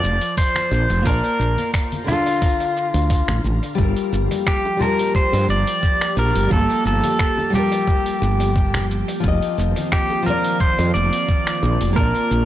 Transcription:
Already playing: F3 F4 A#4 D5
0.03 F1, cabasa
0.21 open hi-hat, cabasa
0.37 C5, kick, open hi-hat, cabasa
0.55 finger snap, open hi-hat, high conga, cabasa
0.71 A#1, cabasa
0.90 F1, open hi-hat, cabasa
1.02 A#1 A#3 F4, kick, open hi-hat
1.06 A#4 D5 A5, cabasa
1.24 open hi-hat, cabasa
1.40 A#1, cabasa
1.57 open hi-hat, high conga, cabasa
1.74 finger snap, kick, open hi-hat, cabasa
1.92 open hi-hat, high conga, cabasa
2.04 D3 D4 F4, low conga
2.09 F4 A4, cabasa
2.26 open hi-hat, cabasa
2.42 kick, open hi-hat, cabasa
2.60 open hi-hat, cabasa
2.77 cabasa
2.94 D2, open hi-hat, cabasa
3.10 kick, open hi-hat, cabasa
3.28 A1, finger snap, open hi-hat, high conga, low conga, cabasa
3.44 A1, cabasa
3.63 open hi-hat, cabasa
3.75 G1 F3 G3 A#3 F4 G4, kick
3.79 A4 A#4, cabasa
3.97 open hi-hat, cabasa
4.12 G1, high bongo, cabasa
4.31 open hi-hat, high conga, cabasa
4.47 G4, finger snap, kick, cabasa
4.65 high bongo, cabasa
4.77 G3 F4, low conga
4.82 A#4 A5, cabasa
4.99 open hi-hat, cabasa
5.15 C5, kick, cabasa
5.32 G2, open hi-hat, high bongo, cabasa
5.49 G1 D5, cabasa
5.67 open hi-hat, cabasa
5.83 kick, cabasa
6.01 finger snap, open hi-hat, cabasa
6.17 A#1 A#4, cabasa
6.35 G1, open hi-hat, cabasa
6.47 G1 G3 F4, kick
6.52 A#3 A4, cabasa
6.70 open hi-hat, cabasa
6.85 G1 A4, cabasa
7.04 open hi-hat, high conga, cabasa
7.19 finger snap, kick, cabasa
7.38 high bongo, high conga, cabasa
7.50 G3 F4, low conga
7.54 G4 A4 A#4, cabasa
7.72 open hi-hat, cabasa
7.88 kick, cabasa
8.06 open hi-hat, cabasa
8.22 G1, high bongo, cabasa
8.40 open hi-hat, cabasa
8.56 kick, cabasa
8.74 finger snap, open hi-hat, low conga, cabasa
8.91 cabasa
9.08 open hi-hat, cabasa
9.20 F1 D#3 F3 C4 F4, kick
9.24 F4 A#4 D#5, cabasa
9.42 open hi-hat, cabasa
9.58 F1, high bongo, cabasa
9.76 open hi-hat, high conga, cabasa
9.92 G4, finger snap, kick, cabasa
10.10 high bongo, cabasa
10.22 F3 F4 A#4
10.27 A#4 D5, low conga, cabasa
10.44 open hi-hat, cabasa
10.60 C5, kick, cabasa
10.79 F2, open hi-hat, high bongo, cabasa
10.94 F1 D5, cabasa
11.13 open hi-hat, cabasa
11.29 kick, cabasa
11.47 finger snap, open hi-hat, cabasa
11.63 A#1, cabasa
11.81 F1, open hi-hat, cabasa
11.93 A#3 F4 A#4
11.97 A#1 D3 F4 D5 A5, kick, cabasa
12.15 open hi-hat, cabasa
12.31 A#1, cabasa

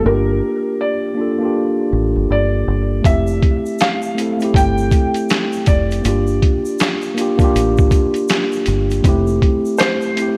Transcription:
0.02 G1 A#3 D4 A#4
0.07 F4 G4
0.81 D5
1.15 A#3 D4
1.19 F4 A4
1.38 A#3 D4
1.43 F4 G4
1.93 A1
2.16 G1
2.30 G1 D5
2.68 G1
3.02 F1 A3 C4 E5, kick, closed hi-hat, shaker
3.06 E4 G4
3.27 shaker
3.42 kick, closed hi-hat
3.66 shaker
3.79 F5, snare, clap, closed hi-hat, shaker
4.02 shaker
4.15 A3 C4, closed hi-hat, shaker
4.19 E4 A4
4.38 A3 C4, closed hi-hat, shaker
4.42 E4 G4
4.54 G1 G5, kick, closed hi-hat, shaker
4.78 shaker
4.91 kick, closed hi-hat, shaker
5.14 closed hi-hat, shaker
5.29 snare, clap, closed hi-hat, shaker
5.53 shaker
5.66 F1 D5, kick, closed hi-hat, shaker
5.91 closed hi-hat, shaker
6.02 G1 A#3 D4, closed hi-hat, shaker
6.06 F4 G4
6.27 shaker
6.42 kick, closed hi-hat
6.66 shaker
6.79 snare, clap, closed hi-hat, shaker
7.02 shaker
7.15 A#3 D4, closed hi-hat, shaker
7.19 F4 G4
7.38 A#3 D4, kick, closed hi-hat, shaker
7.42 F4 G4
7.55 A1, closed hi-hat, shaker
7.78 kick, shaker
7.91 kick, closed hi-hat, shaker
8.14 closed hi-hat, shaker
8.28 snare, clap, closed hi-hat, shaker
8.52 shaker
8.66 G1, closed hi-hat, shaker
8.91 closed hi-hat, shaker
9.02 F1 G3 C4, kick, closed hi-hat, shaker
9.07 A3 E4 G4
9.27 shaker
9.42 kick, closed hi-hat
9.65 shaker
9.78 C5, snare, clap, closed hi-hat, shaker
10.02 shaker
10.15 A3 C4, closed hi-hat, shaker
10.20 E4 G4

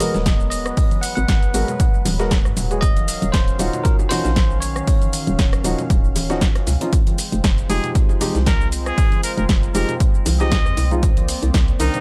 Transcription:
Already playing: F#3 G#3 B3 A#4
0.00 G#3 B3 F#4 A#4 D#5, closed hi-hat, open hi-hat, high conga, low conga, shaker
0.14 D#1, snare, closed hi-hat, shaker
0.26 kick, snare, closed hi-hat, high conga, shaker
0.40 shaker
0.50 B4 D#5, closed hi-hat, open hi-hat, shaker
0.66 cross-stick, closed hi-hat, shaker
0.77 kick, closed hi-hat, open hi-hat, shaker
0.91 closed hi-hat, high conga, shaker
1.01 F#5, closed hi-hat, open hi-hat, shaker
1.16 G#1 F#5, closed hi-hat, shaker
1.28 G#1, kick, snare, closed hi-hat, shaker
1.43 closed hi-hat, shaker
1.54 G#1 G#3 B3 F#4 A#4, closed hi-hat, open hi-hat, shaker
1.68 closed hi-hat, low conga, shaker
1.80 kick, closed hi-hat, shaker
1.94 shaker
2.05 D#1, closed hi-hat, open hi-hat, high bongo, high conga, shaker
2.19 G#3 B3 F#4 A#4, snare, closed hi-hat, shaker
2.31 kick, snare, closed hi-hat, shaker
2.45 G#2, cross-stick, shaker
2.57 D#1, closed hi-hat, open hi-hat, low conga, shaker
2.71 G#3 B3 F#4 G#4, closed hi-hat, shaker
2.81 D#3 C#4 D#5 F5, kick, closed hi-hat, shaker
2.96 closed hi-hat, high conga, shaker
3.08 snare, closed hi-hat, open hi-hat, shaker
3.22 D#1, closed hi-hat, shaker
3.32 D#1 C5, kick, snare, closed hi-hat, shaker
3.48 closed hi-hat, shaker
3.59 D#1 C#4 D#4 F4 F#4, closed hi-hat, open hi-hat, shaker
3.73 closed hi-hat, low conga, shaker
3.84 A#4, kick, closed hi-hat, high bongo, shaker
3.99 high bongo, shaker
4.09 F3 C#4 D#4 F#4 C5, snare, closed hi-hat, open hi-hat, high conga, low conga, shaker
4.25 A#1, snare, closed hi-hat, shaker
4.36 kick, snare, closed hi-hat, high conga, shaker
4.51 shaker
4.60 C#5, closed hi-hat, open hi-hat, shaker
4.76 cross-stick, closed hi-hat, shaker
4.87 kick, closed hi-hat, open hi-hat, shaker
5.02 closed hi-hat, high conga, shaker
5.13 closed hi-hat, open hi-hat, shaker
5.27 D#1, closed hi-hat, shaker
5.39 D#1, kick, snare, closed hi-hat, shaker
5.53 cross-stick, closed hi-hat, shaker
5.64 D#1 F3 C#4 D#4 F#4, closed hi-hat, open hi-hat, high conga, shaker
5.79 closed hi-hat, low conga, shaker
5.90 D#1, kick, closed hi-hat, shaker
6.04 shaker
6.16 closed hi-hat, open hi-hat, high bongo, high conga, shaker
6.30 F3 C#4 D#4 F#4, snare, closed hi-hat, shaker
6.41 kick, snare, closed hi-hat, shaker
6.55 cross-stick, closed hi-hat, shaker
6.67 C#2, snare, closed hi-hat, open hi-hat, low conga, shaker
6.81 F3 C#4 D#4 F4, closed hi-hat, shaker
6.93 G#3 C4 F4 C5, kick, closed hi-hat, shaker
7.07 closed hi-hat, high conga, shaker
7.18 snare, closed hi-hat, open hi-hat, shaker
7.32 F1, closed hi-hat, shaker
7.44 F1, kick, snare, closed hi-hat, shaker
7.58 closed hi-hat, shaker
7.69 F1 F3 G#3 D#4 G4 G#4, closed hi-hat, open hi-hat, shaker
7.84 closed hi-hat, low conga, shaker
7.95 kick, closed hi-hat, high bongo, shaker
8.09 high bongo, shaker
8.21 F3 G#3 D#4 G4, closed hi-hat, open hi-hat, high conga, low conga, shaker
8.35 C2, snare, closed hi-hat, shaker
8.46 A#4, kick, snare, closed hi-hat, high conga, shaker
8.61 shaker
8.72 closed hi-hat, open hi-hat, shaker
8.86 G#4, cross-stick, closed hi-hat, shaker
8.98 kick, closed hi-hat, open hi-hat, shaker
9.12 closed hi-hat, high conga, shaker
9.23 A#4, closed hi-hat, open hi-hat, shaker
9.37 F1 A#4, closed hi-hat, shaker
9.49 F1, kick, snare, closed hi-hat, shaker
9.63 closed hi-hat, shaker
9.74 F1 F3 G#3 D#4 G4 A#4, closed hi-hat, open hi-hat, shaker
9.89 closed hi-hat, low conga, shaker
10.00 kick, closed hi-hat, shaker
10.15 shaker
10.26 C2, closed hi-hat, open hi-hat, high bongo, high conga, shaker
10.40 F3 G#3 D#4 G4 D#5, snare, closed hi-hat, shaker
10.52 kick, snare, closed hi-hat, shaker
10.66 F2, cross-stick, shaker
10.77 C2, closed hi-hat, open hi-hat, low conga, shaker
10.91 F3 G#3 D#4 F4, closed hi-hat, shaker
11.03 A#3 C5 D5, kick, closed hi-hat, shaker
11.17 closed hi-hat, high conga, shaker
11.28 snare, closed hi-hat, open hi-hat, shaker
11.43 C2, closed hi-hat, shaker
11.54 C2, kick, snare, closed hi-hat, shaker
11.68 closed hi-hat, shaker
11.80 C2 D#3 C4 D4 D#4 A#4, closed hi-hat, open hi-hat, shaker
11.94 closed hi-hat, low conga, shaker

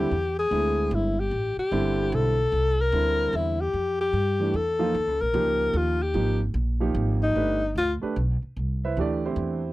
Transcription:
Already playing: G4
0.11 E2
0.39 G#4
0.51 D2 D3 G#3 C4 E4
0.91 G1 E4
1.20 G4
1.31 A1
1.57 G4, muted upright bass stroke
1.72 G1 D3 G3 C4 E4
2.12 B1 A4
2.52 C2
2.81 A#4
2.92 D2 D3 G3 C4 E4
3.33 E2 E4
3.61 G4
3.73 F2
4.01 G4
4.13 G2
4.40 E3 A3 D4 G4
4.54 E2 A4
4.79 F3 A#3 D#4 F4
4.94 D#2
5.07 C#2
5.21 A#1 A#4
5.34 C#2 F3 A#3 D#4 G4
5.73 D#2
5.77 F4
6.02 G4
6.14 G#1 F3 A#3 D#4 G4
6.54 A#1
6.80 F3 A#3 D#4 G4
6.95 G#1
7.23 D#4
7.35 G1 A3 D4 G4 B4
7.75 D2 F4
8.01 A3 D4 G4 B4, muted upright bass stroke
8.16 B1
8.42 muted upright bass stroke
8.56 C2
8.85 E4 B4 C5 E5
8.97 D2 E3 A3 D4 G4
9.01 D5
9.26 C4 E4 G4 C5
9.36 E2

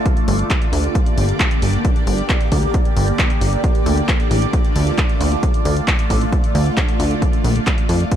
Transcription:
0.06 kick, closed hi-hat
0.17 closed hi-hat
0.28 G1, open hi-hat
0.39 closed hi-hat
0.50 kick, clap, closed hi-hat
0.62 closed hi-hat
0.73 D2, open hi-hat
0.84 closed hi-hat
0.95 kick, closed hi-hat
1.06 closed hi-hat
1.17 G1, open hi-hat
1.29 closed hi-hat
1.40 kick, clap, closed hi-hat
1.51 closed hi-hat
1.62 G1, open hi-hat
1.73 closed hi-hat
1.85 kick, closed hi-hat
1.96 closed hi-hat
2.07 G1, open hi-hat
2.18 closed hi-hat
2.29 kick, clap, closed hi-hat
2.41 closed hi-hat
2.52 D2, kick, open hi-hat
2.63 closed hi-hat
2.74 kick, closed hi-hat
2.85 closed hi-hat
2.97 G1, open hi-hat
3.08 closed hi-hat
3.19 kick, clap, closed hi-hat
3.30 closed hi-hat
3.41 G1, open hi-hat
3.53 closed hi-hat
3.64 kick, closed hi-hat
3.75 closed hi-hat
3.86 D2, open hi-hat
3.97 closed hi-hat
4.09 kick, clap, closed hi-hat
4.20 closed hi-hat
4.31 A1, open hi-hat
4.42 closed hi-hat
4.53 kick, closed hi-hat
4.65 closed hi-hat
4.76 D2, open hi-hat
4.87 closed hi-hat
4.98 kick, clap, closed hi-hat
5.09 closed hi-hat
5.21 D2, open hi-hat
5.32 closed hi-hat
5.43 kick, closed hi-hat
5.54 closed hi-hat
5.65 D2, open hi-hat
5.77 closed hi-hat
5.88 kick, clap, closed hi-hat
5.99 closed hi-hat
6.10 A1, kick, open hi-hat
6.21 closed hi-hat
6.32 kick, closed hi-hat
6.44 closed hi-hat
6.55 D2, open hi-hat
6.66 closed hi-hat
6.77 kick, clap, closed hi-hat
6.89 closed hi-hat
7.00 D2, open hi-hat
7.11 closed hi-hat
7.22 kick, closed hi-hat
7.33 closed hi-hat
7.44 A#1, open hi-hat
7.56 closed hi-hat
7.67 kick, clap, closed hi-hat
7.78 closed hi-hat
7.89 F2, open hi-hat
8.00 closed hi-hat
8.11 kick, closed hi-hat

